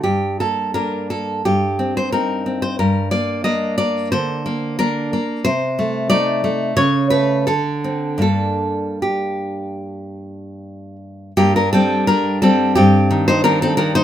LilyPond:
\new Staff \with { instrumentName = "Nylon-string guitar" } { \time 4/4 \key g \minor \tempo 4 = 88 << { g'8 a'8 bes'8 a'8 g'8. c''16 bes'8. c''16 | bes'8 d''8 ees''8 d''8 c''4 bes'4 | c''4 d''4 cis''8 b'8 a'4 | a'4 g'2~ g'8 r8 |
<bes g'>16 <d' bes'>16 <c' a'>8 <d' bes'>8 <c' a'>8 <c' g'>8. <ees' c''>16 <d' bes'>16 <c' a'>16 <d' bes'>16 <ees' c''>16 | } \\ { g,8 bes8 <bes d'>8 bes8 g,8 c'8 <c' ees'>8 c'8 | g,8 bes8 <bes d'>8 bes8 d8 bes8 <bes d'>8 bes8 | c8 a8 <a ees'>8 a8 cis8 a8 d8 c'8 | <g, bes d'>1 |
g,8 g8 g8 g8 g,8 ees8 <ees c'>8 ees8 | } >> }